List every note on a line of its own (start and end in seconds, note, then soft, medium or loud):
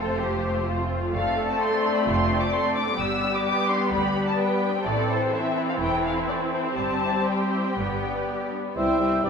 0.00 1.09 F1 soft
0.00 1.09 A3 soft
0.00 1.09 C4 soft
0.00 1.09 F4 soft
0.00 0.18 A4 soft
0.00 0.87 C5 medium
0.00 1.09 C5 soft
0.20 0.66 G4 soft
0.66 1.13 F4 soft
1.13 1.50 F1 soft
1.13 1.24 A3 soft
1.13 2.95 A3 soft
1.13 2.95 C4 soft
1.13 2.06 A4 medium
1.13 4.82 D5 soft
1.13 1.46 F5 medium
1.26 1.37 C4 soft
1.38 1.49 D4 soft
1.49 1.60 C4 soft
1.49 1.60 A5 soft
1.60 1.71 A3 soft
1.60 1.95 C6 medium
1.72 1.83 C4 soft
1.83 1.94 D4 soft
1.95 2.06 C4 soft
1.95 2.06 B5 soft
2.05 2.43 F1 soft
2.05 2.16 A3 soft
2.05 2.51 F4 soft
2.05 2.41 C6 medium
2.18 2.29 C4 soft
2.30 2.41 D4 soft
2.41 2.53 C4 soft
2.41 2.52 D6 soft
2.52 2.65 A3 soft
2.52 2.98 A4 soft
2.52 2.75 C6 medium
2.65 2.76 C4 soft
2.75 2.88 D4 soft
2.75 2.98 D6 medium
2.88 2.99 C4 soft
2.98 3.36 G1 soft
2.98 4.82 G3 soft
2.98 3.10 G3 soft
2.98 4.82 B3 soft
2.98 4.36 G4 soft
2.98 3.33 E6 medium
3.11 3.22 B3 soft
3.23 3.34 D4 soft
3.33 3.45 B3 soft
3.33 3.44 D6 medium
3.45 3.56 G3 soft
3.45 3.68 D6 medium
3.56 3.68 B3 soft
3.69 3.80 D4 soft
3.69 3.92 C6 medium
3.81 3.92 B3 soft
3.91 4.29 D2 soft
3.91 4.03 G3 soft
3.91 4.26 B5 medium
4.04 4.16 B3 soft
4.17 4.28 D4 soft
4.26 4.39 B3 soft
4.26 4.38 A5 soft
4.39 4.51 G3 soft
4.39 4.84 B4 soft
4.39 4.85 G5 medium
4.52 4.63 B3 soft
4.63 4.74 D4 soft
4.75 4.86 B3 soft
4.85 5.23 A1 soft
4.85 6.77 E3 soft
4.85 4.97 A3 soft
4.85 7.74 C4 soft
4.85 5.31 A4 soft
4.85 6.74 A4 soft
4.85 5.09 D5 medium
4.97 5.09 C4 soft
5.09 5.21 E4 soft
5.09 5.33 C5 soft
5.22 5.33 C4 soft
5.32 5.44 A3 soft
5.32 5.80 C4 soft
5.32 5.54 E5 medium
5.44 5.56 C4 soft
5.56 5.68 E4 soft
5.56 5.60 E5 soft
5.68 5.80 C4 soft
5.68 5.73 F5 soft
5.79 6.17 E1 soft
5.79 5.91 A3 soft
5.79 6.75 E4 soft
5.79 6.03 G5 medium
5.93 6.04 C4 soft
6.05 6.16 E4 soft
6.05 6.16 F5 soft
6.16 6.29 C4 soft
6.16 6.21 E5 soft
6.28 6.40 A3 soft
6.28 6.36 D5 soft
6.40 6.53 C4 soft
6.52 6.65 E4 soft
6.52 6.77 C5 soft
6.66 6.78 C4 soft
6.76 7.17 G1 soft
6.76 8.53 G3 soft
6.76 6.90 G3 soft
6.76 8.49 G4 soft
6.76 7.77 C5 soft
6.76 7.27 A5 medium
6.92 7.04 C4 soft
7.05 7.16 E4 soft
7.18 7.29 C4 soft
7.28 7.41 G3 soft
7.28 8.53 G5 soft
7.41 7.54 C4 soft
7.55 7.67 E4 soft
7.66 7.79 C4 soft
7.79 8.18 G1 soft
7.79 7.91 G3 soft
7.79 8.57 B3 soft
7.79 8.57 D5 soft
7.92 8.04 B3 soft
8.04 8.16 D4 soft
8.16 8.28 B3 soft
8.29 8.41 G3 soft
8.40 8.53 B3 soft
8.52 8.65 D4 soft
8.66 8.77 B3 soft
8.76 9.16 C2 soft
8.76 9.17 C2 soft
8.76 9.00 G3 soft
8.76 9.00 C4 soft
8.76 8.99 E4 soft
8.76 9.21 E4 soft
8.76 9.21 C5 soft
8.76 9.21 E5 soft
8.76 9.00 G5 soft
8.76 9.30 G5 soft
9.00 9.24 G3 soft
9.00 9.23 C4 soft
9.00 9.23 E4 soft
9.00 9.24 G5 soft
9.23 9.30 C2 soft
9.23 9.30 G3 soft
9.23 9.30 C4 soft
9.23 9.30 D4 soft
9.23 9.30 E4 soft
9.23 9.30 B4 soft
9.23 9.30 D5 soft
9.23 9.30 G5 soft